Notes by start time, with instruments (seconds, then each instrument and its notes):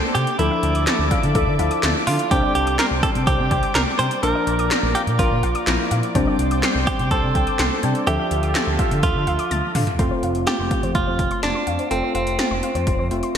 Already playing: synth keys A#3 C4 D4, clean electric guitar A4, analog synth pad C5 D5 G5 D6
0.15 analog synth bass C3, clean electric guitar G4, synth arpeggio sound G5, closed hi-hat
0.27 closed hi-hat
0.39 analog synth bass D2, synth keys F3 D4 E4, clean electric guitar E4, synth arpeggio sound A4, analog synth pad A4 D5 E5, closed hi-hat
0.51 synth arpeggio sound E5
0.63 analog synth bass D2, closed hi-hat
0.75 analog synth bass D2, synth arpeggio sound D6, closed hi-hat
0.87 synth arpeggio sound A6, snare, clap, closed hi-hat
0.99 analog synth bass D2
1.11 synth arpeggio sound F5, kick, closed hi-hat
1.23 analog synth bass D3, closed hi-hat
1.35 analog synth bass D2, synth arpeggio sound A4, kick, closed hi-hat
1.47 analog synth bass D3
1.59 analog synth bass D2, synth keys F3 D4 E4, synth arpeggio sound F5, closed hi-hat
1.71 synth arpeggio sound D6, closed hi-hat
1.83 analog synth bass D2, synth arpeggio sound A6, snare, clap, closed hi-hat
2.07 analog synth bass D3, clean electric guitar F4, synth arpeggio sound F5, open hi-hat
2.19 closed hi-hat
2.31 analog synth bass C2, synth keys G3 C4 D4, clean electric guitar G4, analog synth pad C5 D5 G5, synth arpeggio sound C5, kick, closed hi-hat
2.43 synth arpeggio sound D5
2.55 analog synth bass C2, clean electric guitar G4, closed hi-hat
2.67 analog synth bass C2, synth arpeggio sound D6, closed hi-hat
2.79 clean electric guitar A#4, synth arpeggio sound C7, snare, clap, closed hi-hat
2.91 analog synth bass C2
3.03 clean electric guitar A4, synth arpeggio sound G5, kick, closed hi-hat
3.15 analog synth bass C3, closed hi-hat
3.27 analog synth bass C2, clean electric guitar G4, synth arpeggio sound C5, kick, closed hi-hat
3.39 analog synth bass C3
3.51 analog synth bass C2, synth arpeggio sound G5, kick, closed hi-hat
3.63 synth arpeggio sound D6, closed hi-hat
3.75 analog synth bass C2, clean electric guitar A#4, synth arpeggio sound C7, snare, clap, closed hi-hat
3.99 analog synth bass C3, clean electric guitar C5, synth arpeggio sound G5, closed hi-hat
4.11 closed hi-hat
4.23 analog synth bass A#1, synth keys F3 A#3 D4, analog synth pad A#4, clean electric guitar A#4, synth arpeggio sound A#4, closed hi-hat
4.35 synth arpeggio sound D5
4.47 analog synth bass A#1, closed hi-hat
4.59 analog synth bass A#1, synth arpeggio sound D6, closed hi-hat
4.71 synth arpeggio sound A#6, snare, clap, closed hi-hat
4.83 analog synth bass A#1
4.95 clean electric guitar G4, synth arpeggio sound F5, closed hi-hat
5.07 analog synth bass A#2, closed hi-hat
5.19 analog synth bass A#1, clean electric guitar F4, synth arpeggio sound A#4, kick, closed hi-hat
5.31 analog synth bass A#2
5.43 analog synth bass A#1, synth arpeggio sound F5, closed hi-hat
5.55 synth arpeggio sound D6, closed hi-hat
5.67 analog synth bass A#1, synth keys F3 A#3 E4, synth arpeggio sound A#6, snare, clap, closed hi-hat
5.91 analog synth bass A#2, synth arpeggio sound F5, closed hi-hat
6.03 closed hi-hat
6.15 analog synth bass C2, synth keys G3 C4 D4, analog synth pad C5 G5, synth arpeggio sound C5, kick, closed hi-hat
6.27 synth arpeggio sound D5
6.39 analog synth bass C2, closed hi-hat
6.51 analog synth bass C2, synth arpeggio sound D6, closed hi-hat
6.63 synth arpeggio sound C7, snare, clap, closed hi-hat
6.75 analog synth bass C2
6.87 clean electric guitar G4, synth arpeggio sound G5, kick, closed hi-hat
6.99 analog synth bass C3, closed hi-hat
7.11 analog synth bass C2, clean electric guitar A4, synth arpeggio sound C5, kick, closed hi-hat
7.23 analog synth bass C3
7.35 analog synth bass C2, synth arpeggio sound G5, kick, closed hi-hat
7.47 synth arpeggio sound D6, closed hi-hat
7.59 analog synth bass C2, synth arpeggio sound C7, snare, clap, closed hi-hat
7.83 analog synth bass C3, synth keys G3 C4 D4, synth arpeggio sound G5, closed hi-hat
7.95 closed hi-hat
8.07 analog synth bass D2, synth keys F3 D4 E5, analog synth pad F4 A4 E5, clean electric guitar G4, synth arpeggio sound A4, closed hi-hat
8.19 synth arpeggio sound E5
8.31 analog synth bass D2, closed hi-hat
8.43 analog synth bass D2, synth arpeggio sound D6, closed hi-hat
8.55 synth arpeggio sound A6, snare, clap, closed hi-hat
8.67 analog synth bass D2
8.79 synth arpeggio sound F5, kick, closed hi-hat
8.91 analog synth bass D3, closed hi-hat
9.03 analog synth bass D2, clean electric guitar F4, synth arpeggio sound A4, kick, closed hi-hat
9.15 analog synth bass D3
9.27 analog synth bass D2, synth arpeggio sound F5, closed hi-hat
9.39 synth arpeggio sound D6, closed hi-hat
9.51 analog synth bass D2, synth arpeggio sound A6, closed hi-hat, high tom
9.75 analog synth bass D3, synth arpeggio sound F5, mid tom, open hi-hat
9.87 closed hi-hat, floor tom
9.99 analog synth bass F1, synth keys A3 C4 F4, synth arpeggio sound A4, kick, closed hi-hat
10.11 synth arpeggio sound C5
10.23 analog synth bass F1, synth arpeggio sound F5, closed hi-hat
10.35 analog synth bass F1, closed hi-hat
10.47 clean electric guitar G4, synth arpeggio sound A6, snare, closed hi-hat
10.59 analog synth bass F1, synth arpeggio sound C6
10.71 synth arpeggio sound F5, kick, closed hi-hat
10.83 analog synth bass F2, synth arpeggio sound C5, closed hi-hat
10.95 analog synth bass F1, clean electric guitar F4, kick, closed hi-hat
11.07 analog synth bass F2, synth arpeggio sound C5
11.19 analog synth bass F1, kick, closed hi-hat
11.31 synth arpeggio sound C6, closed hi-hat
11.43 analog synth bass F1, clean electric guitar D4, synth arpeggio sound A6, snare, closed hi-hat
11.55 synth arpeggio sound C6
11.67 analog synth bass F2, synth arpeggio sound F5, closed hi-hat
11.79 synth arpeggio sound C5, closed hi-hat
11.91 analog synth bass F1, synth keys A3 C4 F4, clean electric guitar C4, synth arpeggio sound A4, closed hi-hat
12.03 synth arpeggio sound C5
12.15 analog synth bass F1, clean electric guitar C4, synth arpeggio sound F5, closed hi-hat
12.27 analog synth bass F1, closed hi-hat
12.39 synth arpeggio sound A6, snare, closed hi-hat
12.51 analog synth bass F1, synth arpeggio sound C6
12.63 synth arpeggio sound F5, closed hi-hat
12.75 analog synth bass F2, synth arpeggio sound C5, closed hi-hat
12.87 analog synth bass F1, kick, closed hi-hat
12.99 analog synth bass F2, synth arpeggio sound C5
13.11 analog synth bass F1, synth keys A3 C4 F4, closed hi-hat
13.23 synth arpeggio sound C6, closed hi-hat